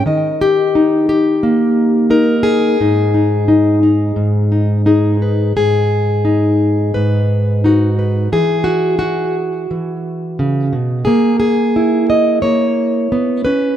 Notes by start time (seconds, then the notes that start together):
0.06 D#3 D#5
0.41 G4
0.75 D#4
1.09 G4
1.43 A#3
2.10 D#4 A#4
2.43 G#4
2.81 G#2 D#4
3.14 D#4
3.48 D#4
3.83 D#4
4.16 G#2
4.52 D#4
4.86 D#4 G#4
5.22 B4
5.56 G#2 G#4
6.25 D#4
6.94 G#2 B4
7.64 D#4 F#4
7.99 B4
8.32 E3 G#4
8.64 F#4
8.99 F#4
9.71 E3
10.39 C#3
10.73 B2
11.05 A#3 G#4
11.40 G#4
11.76 E4
12.10 D#5
12.42 A#3 C#5
13.12 B3
13.45 C#4 B4